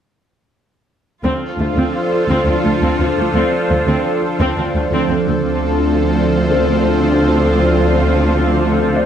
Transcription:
1.23 D2 F3 C4 D4 F4 A4 C5
1.59 D2 A3 F4 F5
1.76 D2 C4
2.29 D2 C4
2.47 D2 C4
2.64 D2 A3
2.81 D2 C4
2.99 D2 C4 C5
3.17 D2 A3
3.34 D2 C4
3.69 D2 A3
3.87 D2 C4
4.40 D2 C4
4.57 D2 C4
4.75 D2 A3
4.92 D2 C4
5.10 D2 C4
5.27 D2 A3
5.43 D2 F3 C4 D4 F4 A4 C5
6.51 A3 A4
8.96 D5

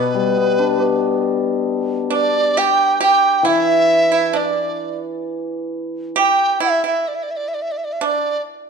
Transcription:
Already playing: B2 B3 B4
0.14 G3
0.37 B3
0.59 D4
0.80 G4
2.10 D4 D5
2.57 G4 G5
3.00 G4 G5
3.43 E3 E4 E5
4.12 E4
4.33 D4 D5
6.16 G4 G5
6.60 E4 E5
6.84 E4 E5
7.08 D5
7.15 E5
7.23 D5
7.31 E5
7.36 D5
7.48 E5
7.54 D5
7.62 E5
7.71 D5
7.77 E5
7.84 D5
7.93 E5
8.01 D4 D5

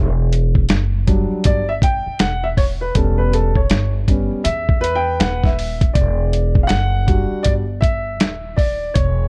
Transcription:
Already playing: E1
0.33 closed hi-hat
0.55 kick
0.69 F#1, snare, closed hi-hat
1.07 F#3 G3 D4, kick, closed hi-hat
1.31 muted upright bass stroke
1.44 G1 D5, kick, closed hi-hat
1.69 E5
1.82 G5, kick, closed hi-hat
2.06 muted upright bass stroke
2.19 E1 F#5, snare, closed hi-hat
2.44 E5
2.57 C#5, kick, open hi-hat
2.81 B4
2.95 E1 G3 B3 C#4 A4, kick, closed hi-hat
3.18 B4
3.33 A4, closed hi-hat
3.55 C#5, kick
3.70 G1, snare, closed hi-hat
4.08 G3 B3 C#4, kick, closed hi-hat
4.31 muted upright bass stroke
4.44 E2 E5, closed hi-hat
4.69 kick
4.81 B4, closed hi-hat
4.95 G5
5.20 D#1 F#5, snare, closed hi-hat
5.44 E5, kick, snare
5.59 open hi-hat
5.81 kick, closed hi-hat
5.93 E1 D5, kick, closed hi-hat
6.33 closed hi-hat
6.55 kick
6.63 F5
6.67 F#1 F#5, snare, closed hi-hat
7.06 G3 D4 F#4, kick, closed hi-hat
7.31 muted upright bass stroke
7.43 G1 D5, kick, closed hi-hat
7.81 E5, kick, closed hi-hat
8.20 D#1, snare, closed hi-hat
8.56 D5, kick, open hi-hat
8.94 E1 C#5, kick, closed hi-hat

